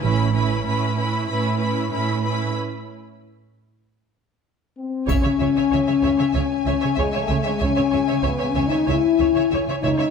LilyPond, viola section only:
\new Staff \with { instrumentName = "Viola section" } { \time 4/4 \key cis \minor \tempo 4 = 95 <cis' e'>8 <cis' e'>8 <cis' e'>8 <cis' e'>8 <cis' e'>8 <cis' e'>8 <cis' e'>8 <cis' e'>8 | r1 | cis''16 cis''16 cis''16 cis''16 cis''16 cis''16 cis''16 cis''16 cis''16 r16 cis''16 cis''16 cis''16 cis''16 cis''16 cis''16 | cis''16 cis''16 cis''16 cis''16 cis''16 cis''16 cis''16 cis''16 cis''16 r16 cis''16 cis''16 cis''16 cis''16 cis''16 cis''16 | }